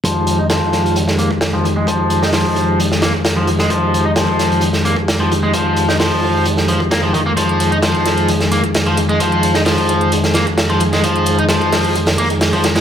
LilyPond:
<<
  \new Staff \with { instrumentName = "Tonewheel organ" } { \time 4/4 \key f \minor \tempo 4 = 131 g'1~ | g'1~ | g'1~ | g'1 |
aes'1~ | aes'1~ | aes'1 | }
  \new Staff \with { instrumentName = "Tonewheel organ" } { \clef bass \time 4/4 \key f \minor <f, ees aes>1~ | <f, ees aes>1~ | <f, ees aes>1~ | <f, ees aes>1~ |
<f, ees aes>1~ | <f, ees aes>1~ | <f, ees aes>1 | }
  \new Staff \with { instrumentName = "Overdriven electric guitar" } { \clef bass \time 4/4 \key f \minor f8. ees'16 f4 r8 bes16 r8 f16 r16 aes16 | f8. ees'16 f4 r8 bes16 r8 f16 r16 aes16 | f8. ees'16 f4 r8 bes16 r8 f16 r16 aes16 | f8. ees'16 f4 r8 f16 r16 bes16 f16 ees16 bes16 |
f8. ees'16 f4 r8 bes16 r8 f16 r16 aes16 | f8. ees'16 f4 r8 bes16 r8 f16 r16 aes16 | f8. ees'16 f4 r8 bes16 r8 f16 r16 aes16 | }
  \new DrumStaff \with { instrumentName = "Drums" } \drummode { \time 4/4 <hh bd>8 hh8 <hh sn>16 bd16 <hh sn>16 hh16 hh16 sn16 hh16 bd16 <hh sn>8 hh8 | <hh bd>8 hh16 sn16 <hho sn>16 bd16 hh8 hh16 sn16 <hh sn>16 bd16 <hh sn>8 hh16 sn16 | <hh bd>8 hh8 <hh sn>16 bd16 <hh sn>16 hh16 hh16 sn16 hh16 bd16 <hh sn>8 hh8 | <hh bd>8 hh16 sn16 <hho sn>16 bd8. hh16 sn16 hh16 bd16 <hh sn>8 <hh bd>8 |
<hh bd>16 hh16 hh16 hh16 <hh sn>16 <hh bd>16 <hh sn>16 hh16 hh16 <hh sn>16 hh16 <hh bd>16 <hh sn>16 hh16 hh16 hh16 | <hh bd>16 hh16 hh16 <hh sn>16 <hh hho sn>16 <hh bd>16 hh16 hh16 hh16 <hh sn>16 <hh sn>16 <hh bd>16 <hh sn>16 hh16 hh16 <hh sn>16 | <hh bd>16 hh16 hh16 hh16 <hh sn>16 <hh bd>16 <hh hho sn>16 <hh bd>16 hh16 <hh hho sn>16 <hh bd>16 hh16 <hh hho sn>16 <hh bd>16 <hh sn>16 <hh sn>16 | }
>>